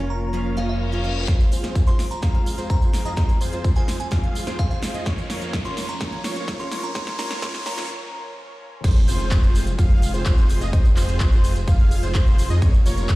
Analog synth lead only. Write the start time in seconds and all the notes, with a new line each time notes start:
1.28 C5
1.52 C5
1.87 C5
2.23 F5
2.58 C5
3.05 D#5
3.17 C5
3.41 C5
3.76 C5
4.12 F5
4.47 C5
4.94 D#5
5.06 C#5
5.30 C#5
5.65 C#5
6.01 C#5
6.24 C#5
6.60 C#5
6.95 C#5
7.19 C#5
7.42 C#5
7.66 C#5
8.84 C5
9.08 C5
9.43 C5
9.79 F5
10.14 C5
10.61 D#5
10.73 C5
10.97 C5
11.32 C5
11.68 F5
12.03 C5
12.50 D#5
12.62 C#5
12.86 C#5